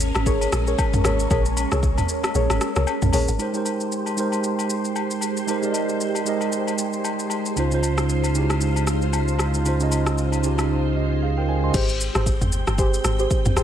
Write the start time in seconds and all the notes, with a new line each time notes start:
Already playing: G#1 G#3 A#3 C#4
0.00 shaker
0.15 G#1, cross-stick, high agogo, shaker
0.26 G#4 A#4 C#5, kick, shaker
0.41 high agogo, shaker
0.52 A#1, cross-stick, shaker
0.67 G#4 A#4 C#5, shaker
0.78 kick, high agogo, low woodblock, shaker
0.93 G#1, mid tom, shaker
1.04 G#1 G#4 A#4 C#5, cross-stick, high agogo, shaker
1.19 shaker
1.30 A#1 G#4 A#4 C#5, kick, high agogo, shaker
1.45 shaker
1.57 high agogo, shaker
1.72 C2 G#4 A#4 C#5, cross-stick, shaker
1.83 kick, shaker
1.98 mid tom, high agogo, shaker
2.09 shaker
2.23 cross-stick, high agogo, shaker
2.35 A#1 G#4 A#4 C#5, shaker
2.50 G#1, cross-stick, high agogo, shaker
2.61 cross-stick, shaker
2.76 C2 G#4 A#4 C#5, cross-stick, shaker
2.87 high agogo, low woodblock, shaker
3.02 A#1, mid tom, shaker
3.13 A#1 G#4 A#4 C#5, open hi-hat, high agogo, shaker
3.28 G#1, shaker
3.38 G#3 D#4 G4 A#4 C5, high agogo, shaker
3.53 G#3 D#4 G4 A#4 C5, shaker
3.65 high agogo, shaker
3.80 shaker
3.92 shaker
4.06 high agogo, shaker
4.16 G#3 D#4 G4 A#4 C5, shaker
4.32 high agogo, shaker
4.44 shaker
4.59 high agogo, shaker
4.70 shaker
4.85 shaker
4.96 high agogo, low woodblock, shaker
5.11 shaker
5.21 high agogo, shaker
5.37 shaker
5.47 G#3 D#4 G4 A#4 C5, high agogo, shaker
5.62 G#3 D#4 G4 A#4 D5, shaker
5.72 D#5, high agogo, shaker
5.89 shaker
6.01 shaker
6.15 high agogo, shaker
6.25 G#3 D#4 G4 A#4 D#5, shaker
6.41 high agogo, shaker
6.52 shaker
6.67 high agogo, shaker
6.78 shaker
6.93 shaker
7.04 high agogo, low woodblock, shaker
7.19 shaker
7.30 high agogo, shaker
7.46 shaker
7.56 C#2 C#3 C#4 D#4 F4 C5, high agogo, shaker
7.71 C#3 C#4 D#4 F4 C5, shaker
7.83 high agogo, shaker
7.98 cross-stick, shaker
8.09 shaker
8.24 high agogo, shaker
8.34 C#3 C#4 D#4 E4 G4, shaker
8.43 F4
8.50 cross-stick, high agogo, shaker
8.61 shaker
8.76 high agogo, shaker
8.87 cross-stick, shaker
9.02 shaker
9.13 high agogo, low woodblock, shaker
9.28 shaker
9.39 cross-stick, high agogo, shaker
9.54 shaker
9.64 C#3 C#4 D#4 F4 C5, high agogo, shaker
9.79 C#3 C#4 D#4 F4 D#5, shaker
9.91 high agogo, shaker
10.06 cross-stick, shaker
10.18 shaker
10.32 high agogo, shaker
10.43 C#3 C#4 D#4 F4 G4, shaker
10.58 cross-stick, high agogo, shaker
10.97 G4 D#5
11.23 G#4 F5
11.38 A#4 G5
11.49 C5 G#5
11.64 D#5 C6
11.74 G#1 G#3 C4 G4 G#4 C5 G5, kick, crash, shaker
11.89 shaker
12.01 shaker
12.15 G#1 G4 G#4 C5, cross-stick, shaker
12.26 kick, shaker
12.41 G1, mid tom, shaker
12.52 shaker
12.67 G1, cross-stick, shaker
12.78 G4 G#4 C5, kick, shaker
12.94 shaker
13.04 G#1, cross-stick, shaker
13.19 G4 G#4 C5, shaker
13.31 kick, shaker
13.45 G1, mid tom, shaker
13.56 G1 G4 G#4 C5, cross-stick, shaker